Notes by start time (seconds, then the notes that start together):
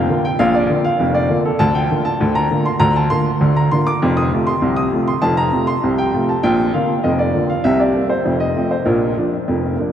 Already playing: F5
0.09 D3 A#3 F4
0.25 G5
0.39 A#1 A#2 F5
0.55 D5
0.70 D3 A#3 F4
0.85 F5
1.00 F1 F2
1.14 D5
1.30 D3 A#3 F4
1.45 A4
1.59 D2 D3 A5
1.75 G5
1.91 D3 A#3 F4
2.05 A5
2.20 D2 D3
2.35 A#5
2.51 D3 A#3 F4
2.66 C6
2.80 D2 D3 A#5
2.96 A5
3.10 D3 A#3 F4 C6
3.41 D2 D3
3.56 A#5
3.71 D3 A#3 F4 C6
3.87 D6
4.02 F1 F2
4.17 D#6
4.32 C3 A3 F4
4.47 C6
4.62 C2 C3
4.76 D#6
4.92 C3 A3 F4
5.08 C6
5.22 F1 F2 A5
5.37 A#5
5.53 C3 A3 F4
5.67 C6
5.83 C2 C3
5.98 G5
6.13 C3 A3 F4
6.29 A5
6.43 A#1 A#2 G5
6.74 D3 A#3 F4 F5
7.04 F1 F2 D#5
7.19 D5
7.35 D3 A#3 F4
7.50 F5
7.64 C2 C3 E5
7.80 D5
7.95 G3 A#3 C4
8.10 C5
8.25 F1 F2
8.40 D#5
8.56 F3 A3 C4
8.71 C5
8.85 A#1 A#2 A#4
9.17 F3 A#3 D4
9.48 F1 F2
9.79 F3 A#3 D4